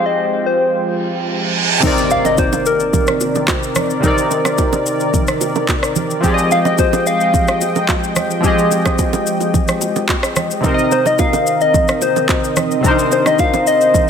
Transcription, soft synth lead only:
0.06 D#5
0.46 C5
2.11 F5
2.26 D#5
2.39 C5
2.67 A#4
6.52 F5
6.66 D#5
6.79 C5
7.07 F5
10.92 C5
11.07 D#5
11.20 F5
11.62 D#5
12.02 C5
13.13 C5
13.27 D#5
13.40 F5
13.68 D#5

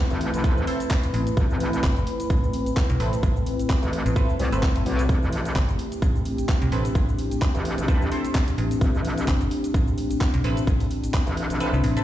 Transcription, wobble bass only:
0.11 A1
0.34 A1
1.37 A1
3.83 A1
4.39 C2
4.86 B1
5.09 A1
7.55 A1
7.78 A1
8.81 A1
11.27 A1
11.50 A1

